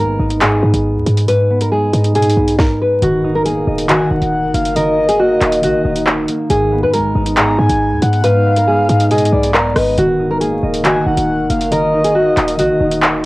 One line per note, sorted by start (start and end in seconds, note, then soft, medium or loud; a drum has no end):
0.00 0.19 G#1 loud
0.00 0.40 G#2 medium
0.00 1.05 G#3 medium
0.00 0.63 B3 medium
0.00 0.19 D#4 medium
0.00 0.39 A#4 medium
0.00 0.24 D#5 medium
0.20 0.61 G#1 loud
0.20 1.93 D#4 medium
0.30 closed hi-hat medium
0.41 1.27 G#2 loud
0.41 1.24 G#4 loud
0.41 clap loud
0.41 closed hi-hat medium
0.63 0.73 G#2 loud
0.63 1.50 B3 medium
0.74 0.97 G#1 loud
0.74 closed hi-hat medium
0.96 1.06 D#2 loud
1.06 1.90 G#2 loud
1.06 1.71 G#3 medium
1.06 closed hi-hat medium
1.17 closed hi-hat medium
1.28 2.14 G#2 medium
1.28 1.59 B4 loud
1.28 closed hi-hat medium
1.50 2.37 B3 medium
1.61 1.71 A#4 medium
1.61 closed hi-hat medium
1.72 3.07 G#3 medium
1.72 2.13 G#4 medium
1.93 2.17 G#2 loud
1.93 3.24 D#4 medium
1.93 closed hi-hat medium
2.04 closed hi-hat medium
2.15 3.07 G#2 loud
2.15 2.28 B2 loud
2.15 2.56 G#4 medium
2.15 closed hi-hat medium
2.22 2.36 G#2 loud
2.22 closed hi-hat medium
2.30 closed hi-hat medium
2.37 2.58 B1 loud
2.37 3.52 B3 medium
2.48 closed hi-hat medium
2.59 2.78 A#4 medium
2.59 kick loud
2.59 snare medium
2.81 3.00 B4 medium
3.02 3.65 D#1 loud
3.02 6.46 D#3 medium
3.02 3.88 D#3 loud
3.02 13.26 D#4 medium
3.02 6.47 F#4 medium
3.02 3.33 F#4 loud
3.02 6.47 A#4 medium
3.02 closed hi-hat medium
3.24 4.11 D#4 medium
3.35 3.45 A#4 medium
3.45 4.54 A#3 medium
3.45 3.86 G#4 medium
3.45 closed hi-hat medium
3.67 3.91 D#1 loud
3.67 5.41 D#5 medium
3.78 closed hi-hat medium
3.89 4.01 F1 loud
3.89 4.75 D#3 medium
3.89 4.72 F#4 medium
3.89 4.10 G#5 medium
3.89 clap loud
3.89 closed hi-hat loud
4.00 4.10 D#1 loud
4.11 4.21 D#1 loud
4.11 4.98 D#4 medium
4.11 4.52 F#5 medium
4.22 4.45 D#1 loud
4.22 closed hi-hat medium
4.43 4.54 F1 loud
4.54 5.38 F#1 loud
4.54 5.19 A#3 medium
4.54 4.75 F5 medium
4.54 closed hi-hat medium
4.65 closed hi-hat medium
4.76 5.62 D#3 loud
4.76 5.07 A#4 loud
4.76 6.02 D#5 loud
4.76 closed hi-hat medium
4.98 5.84 D#4 medium
5.09 5.18 G#4 medium
5.09 closed hi-hat medium
5.19 6.28 A#3 medium
5.19 5.60 F#4 medium
5.41 5.65 D#1 loud
5.41 7.20 D#5 medium
5.41 clap medium
5.41 closed hi-hat medium
5.52 closed hi-hat medium
5.63 5.75 A#1 loud
5.63 6.55 D#3 medium
5.63 6.46 F#4 loud
5.63 closed hi-hat medium
5.74 5.84 D#1 loud
5.85 6.26 D#1 loud
5.85 7.15 D#4 medium
5.96 closed hi-hat medium
6.07 clap loud
6.28 6.78 A#3 medium
6.28 closed hi-hat medium
6.50 6.84 G#1 loud
6.50 7.36 G#2 medium
6.50 9.94 G#3 medium
6.50 9.94 B3 medium
6.50 6.81 G#4 medium
6.50 closed hi-hat medium
6.72 7.58 B3 medium
6.83 7.00 G#2 loud
6.83 6.92 B4 medium
6.93 8.01 G#3 medium
6.93 7.34 A#4 medium
6.93 closed hi-hat medium
6.99 7.14 G#1 loud
7.15 7.57 G#1 loud
7.15 8.89 D#4 loud
7.26 closed hi-hat medium
7.37 8.23 G#2 loud
7.37 8.20 G#4 medium
7.37 7.58 A#5 medium
7.37 clap loud
7.37 closed hi-hat loud
7.58 7.69 G#2 loud
7.58 8.45 B3 medium
7.58 7.99 G#5 medium
7.70 7.93 G#1 loud
7.70 closed hi-hat medium
7.91 8.02 D#2 loud
8.02 8.86 G#2 loud
8.02 8.66 G#3 medium
8.02 8.23 F#5 medium
8.02 closed hi-hat medium
8.13 closed hi-hat medium
8.24 9.10 G#2 medium
8.24 8.55 B4 loud
8.24 9.07 F5 loud
8.24 closed hi-hat medium
8.46 9.32 B3 medium
8.56 8.67 A#4 medium
8.56 closed hi-hat medium
8.67 9.75 G#3 medium
8.67 9.08 G#4 medium
8.89 9.12 G#2 loud
8.89 10.19 D#4 medium
8.89 closed hi-hat medium
9.00 closed hi-hat medium
9.11 10.03 G#2 loud
9.11 9.23 B2 loud
9.11 9.52 G#4 loud
9.11 9.32 D#5 loud
9.11 closed hi-hat medium
9.18 9.32 G#2 loud
9.18 closed hi-hat medium
9.25 closed hi-hat medium
9.32 9.74 B1 loud
9.32 10.47 B3 medium
9.32 9.73 D5 medium
9.43 closed hi-hat medium
9.54 9.74 A#4 medium
9.54 clap loud
9.75 9.97 G#1 loud
9.75 10.03 G#3 medium
9.75 9.96 B4 medium
9.75 9.96 D#5 medium
9.75 cross-stick medium
9.75 open hi-hat medium
9.98 10.60 D#1 loud
9.98 10.84 D#3 loud
9.98 13.26 D#3 medium
9.98 13.26 F#4 medium
9.98 10.29 F#4 loud
9.98 13.26 A#4 medium
9.98 closed hi-hat medium
10.20 11.06 D#4 medium
10.31 10.40 A#4 medium
10.41 11.50 A#3 medium
10.41 10.82 G#4 medium
10.41 closed hi-hat medium
10.63 10.86 D#1 loud
10.63 12.37 D#5 medium
10.74 closed hi-hat medium
10.85 10.97 F1 loud
10.85 11.71 D#3 medium
10.85 11.68 F#4 medium
10.85 11.06 G#5 medium
10.85 clap loud
10.85 closed hi-hat loud
10.96 11.06 D#1 loud
11.06 11.17 D#1 loud
11.06 11.93 D#4 medium
11.06 11.47 F#5 medium
11.17 11.41 D#1 loud
11.17 closed hi-hat medium
11.39 11.49 F1 loud
11.50 12.33 F#1 loud
11.50 12.15 A#3 medium
11.50 11.71 F5 medium
11.50 closed hi-hat medium
11.61 closed hi-hat medium
11.72 12.57 D#3 loud
11.72 12.03 A#4 loud
11.72 12.98 D#5 loud
11.72 closed hi-hat medium
11.93 12.80 D#4 medium
12.04 12.14 G#4 medium
12.04 closed hi-hat medium
12.15 13.24 A#3 medium
12.15 12.56 F#4 medium
12.37 12.60 D#1 loud
12.37 13.26 D#5 medium
12.37 clap medium
12.37 closed hi-hat medium
12.48 closed hi-hat medium
12.59 12.71 A#1 loud
12.59 13.26 D#3 medium
12.59 13.26 F#4 loud
12.59 closed hi-hat medium
12.70 12.80 D#1 loud
12.80 13.22 D#1 loud
12.80 13.26 D#4 medium
12.91 closed hi-hat medium
13.02 clap loud